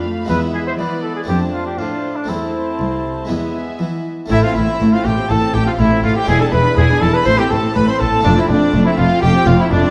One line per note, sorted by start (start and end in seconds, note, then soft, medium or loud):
0.00 0.26 F2 soft
0.00 0.26 F2 medium
0.00 0.24 D4 soft
0.00 0.25 F4 soft
0.00 0.30 F5 medium
0.00 0.77 B5 medium
0.05 0.30 A3 soft
0.25 1.23 G#3 soft
0.25 1.24 B3 soft
0.25 1.25 E4 soft
0.29 0.75 E2 medium
0.29 0.75 E2 soft
0.29 1.26 B3 medium
0.29 0.40 B4 medium
0.29 0.79 E5 soft
0.54 0.59 G#4 medium
0.67 0.73 C5 medium
0.78 1.25 E3 medium
0.78 1.25 E3 soft
0.78 1.02 B4 medium
0.78 1.29 D5 soft
0.78 1.27 B5 soft
1.03 1.15 A4 medium
1.16 1.22 G#4 medium
1.24 2.23 A3 soft
1.24 2.24 C4 soft
1.28 1.74 F2 soft
1.28 1.75 F2 medium
1.28 2.29 D4 soft
1.28 1.40 G4 medium
1.28 1.78 C5 soft
1.28 1.77 A5 medium
1.53 1.66 F4 medium
1.66 1.80 G4 medium
1.78 2.25 A2 medium
1.78 2.25 A2 soft
1.78 2.18 F4 medium
1.78 2.28 C5 soft
1.78 2.28 A5 soft
2.16 2.30 D4 medium
2.24 3.24 A3 soft
2.24 3.25 C4 soft
2.24 3.26 E4 soft
2.29 2.75 E2 soft
2.29 2.76 E2 soft
2.29 3.29 C4 soft
2.29 3.80 E4 soft
2.29 3.28 C5 medium
2.29 3.28 A5 medium
2.79 3.25 C2 soft
2.79 3.26 C2 medium
3.25 4.25 G#3 soft
3.25 4.26 B3 soft
3.25 4.26 E4 soft
3.29 3.76 E2 soft
3.29 4.10 B3 soft
3.29 4.10 E5 soft
3.29 4.10 G#5 soft
3.79 4.26 E3 soft
3.79 4.27 E3 medium
4.26 6.22 A3 medium
4.26 4.41 A3 medium
4.26 6.23 C4 soft
4.26 6.23 E4 medium
4.30 4.39 A1 medium
4.30 4.38 A2 medium
4.30 4.53 A2 medium
4.30 4.44 E4 medium
4.30 4.35 E4 medium
4.30 4.42 E5 loud
4.42 4.55 C4 medium
4.42 4.55 F4 medium
4.42 4.56 F5 medium
4.55 4.63 A1 medium
4.55 4.77 A2 medium
4.55 4.63 A2 medium
4.55 4.67 A3 medium
4.55 4.92 E4 medium
4.55 4.94 E4 medium
4.55 4.92 E5 medium
4.68 4.80 C4 medium
4.79 4.89 A1 medium
4.79 4.88 A2 medium
4.79 5.02 A2 medium
4.79 4.91 A3 medium
4.92 5.04 C4 medium
4.92 5.07 F4 medium
4.92 4.98 F4 medium
4.92 5.05 F5 medium
5.04 5.13 A1 medium
5.04 5.13 A2 medium
5.04 5.27 A2 medium
5.04 5.17 A3 medium
5.04 5.13 G4 medium
5.04 5.32 G4 medium
5.04 5.30 G5 medium
5.17 5.29 C4 medium
5.30 5.38 A1 medium
5.30 5.38 A2 medium
5.30 5.52 A2 medium
5.30 5.41 A3 medium
5.30 5.56 A4 medium
5.30 5.39 A4 medium
5.30 5.54 A5 loud
5.42 5.54 C4 medium
5.54 5.62 A1 medium
5.54 5.62 A2 medium
5.54 5.76 A2 medium
5.54 5.66 A3 medium
5.54 5.66 G4 medium
5.54 5.67 G4 medium
5.54 5.67 G5 medium
5.66 5.79 C4 medium
5.66 5.72 F4 medium
5.66 5.79 F4 medium
5.66 5.80 F5 medium
5.79 5.87 A1 medium
5.79 5.87 A2 medium
5.79 6.01 A2 medium
5.79 5.90 A3 medium
5.79 6.03 E4 medium
5.79 6.04 E5 medium
5.91 6.03 C4 medium
6.03 6.12 A1 medium
6.03 6.12 A2 medium
6.03 6.26 A2 medium
6.03 6.15 A3 medium
6.03 6.16 F4 medium
6.03 6.16 F5 medium
6.15 6.28 C4 medium
6.15 6.28 G4 medium
6.15 6.28 G5 medium
6.24 7.21 G#3 medium
6.24 7.22 D4 medium
6.24 7.23 E4 medium
6.24 6.39 E4 medium
6.28 6.36 E1 medium
6.28 6.50 E2 medium
6.28 6.37 E2 medium
6.28 6.40 G#4 medium
6.28 6.41 G#4 medium
6.28 6.40 G#5 medium
6.40 6.52 D4 medium
6.40 6.46 A4 medium
6.40 6.53 A4 medium
6.40 6.54 A5 medium
6.52 6.61 E1 medium
6.52 6.75 E2 medium
6.52 6.61 E2 medium
6.52 6.65 E4 medium
6.52 6.76 B4 medium
6.52 6.77 B4 medium
6.52 6.77 B5 medium
6.65 6.77 D4 medium
6.77 6.86 E1 medium
6.77 6.85 E2 medium
6.77 6.99 E2 medium
6.77 6.89 E4 medium
6.77 7.02 G#4 medium
6.77 7.02 G#5 loud
6.90 7.02 D4 medium
7.01 7.10 E1 medium
7.01 7.10 E2 medium
7.01 7.24 E2 medium
7.01 7.14 E4 medium
7.01 7.15 A4 medium
7.01 7.14 A4 medium
7.01 7.14 A5 loud
7.14 7.27 D4 medium
7.14 7.27 B4 medium
7.14 7.26 B4 medium
7.14 7.27 B5 medium
7.22 8.18 A3 medium
7.22 8.19 C4 medium
7.22 8.21 E4 medium
7.22 7.30 C5 loud
7.22 7.40 C5 loud
7.26 7.34 A1 medium
7.26 7.48 A2 medium
7.26 7.35 A2 medium
7.26 7.38 A3 medium
7.26 7.39 C6 loud
7.38 7.52 C4 medium
7.38 7.50 G4 medium
7.38 7.52 G4 medium
7.38 7.52 G5 medium
7.50 7.59 A1 medium
7.50 7.73 A2 medium
7.50 7.59 A2 medium
7.50 7.64 A3 medium
7.50 7.74 A4 medium
7.50 7.75 A4 medium
7.50 7.76 A5 medium
7.65 7.76 C4 medium
7.75 7.84 A1 medium
7.75 7.97 A2 medium
7.75 7.83 A2 medium
7.75 7.87 A3 medium
7.75 7.87 B4 medium
7.75 7.88 B4 medium
7.75 7.88 B5 loud
7.87 8.01 C4 medium
7.87 7.99 C5 medium
7.87 8.02 C5 medium
7.87 8.01 C6 medium
7.99 8.09 A1 medium
7.99 8.21 A2 medium
7.99 8.08 A2 medium
7.99 8.13 A3 medium
7.99 8.08 A4 medium
7.99 8.23 A4 medium
7.99 8.24 A5 medium
8.13 8.25 C4 medium
8.19 9.90 A3 medium
8.19 9.90 C4 medium
8.19 9.90 F4 medium
8.23 8.33 F1 medium
8.23 8.46 F2 medium
8.23 8.33 F2 medium
8.23 8.36 A3 medium
8.23 8.35 D4 medium
8.23 8.30 D4 medium
8.23 8.37 D5 loud
8.36 8.49 C4 medium
8.36 8.48 E4 medium
8.36 8.49 E4 medium
8.36 8.50 E5 medium
8.48 8.57 F1 medium
8.48 8.71 F2 medium
8.48 8.57 F2 medium
8.48 8.61 A3 medium
8.48 8.85 D4 medium
8.48 8.85 D5 medium
8.61 8.73 C4 medium
8.73 8.82 F1 medium
8.73 8.95 F2 medium
8.73 8.82 F2 medium
8.73 8.85 A3 medium
8.85 8.98 C4 medium
8.85 8.91 E4 medium
8.85 8.98 E4 medium
8.85 8.99 E5 medium
8.97 9.06 F1 medium
8.97 9.20 F2 medium
8.97 9.06 F2 medium
8.97 9.10 A3 medium
8.97 9.21 F4 medium
8.97 9.23 F4 medium
8.97 9.23 F5 loud
9.09 9.22 C4 medium
9.22 9.31 F1 medium
9.22 9.30 F2 medium
9.22 9.45 F2 medium
9.22 9.34 A3 medium
9.22 9.46 G4 medium
9.22 9.47 G4 medium
9.22 9.47 G5 loud
9.34 9.47 C4 medium
9.47 9.55 F1 medium
9.47 9.69 F2 medium
9.47 9.55 F2 medium
9.47 9.59 A3 medium
9.47 9.59 F4 medium
9.47 9.60 F4 medium
9.47 9.60 F5 medium
9.60 9.72 C4 medium
9.60 9.73 E4 medium
9.60 9.72 E4 medium
9.60 9.73 E5 medium
9.71 9.80 F1 medium
9.71 9.90 F2 medium
9.71 9.80 F2 medium
9.71 9.83 A3 medium
9.71 9.90 D4 medium
9.71 9.90 D5 medium
9.84 9.90 C4 medium